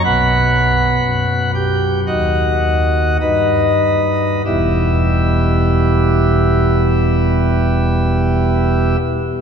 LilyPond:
<<
  \new Staff \with { instrumentName = "Pipe organ" } { \time 4/4 \key e \minor \tempo 4 = 48 <b' fis'' b''>4. <g' g''>8 <fis' dis'' fis''>4 <dis' b' dis''>4 | <e, b, g b e' g' e''>1 | }
  \new Staff \with { instrumentName = "Pipe organ" } { \clef bass \time 4/4 \key e \minor <b,, b,>4 fis,4 dis,4 g,4 | e,,1 | }
>>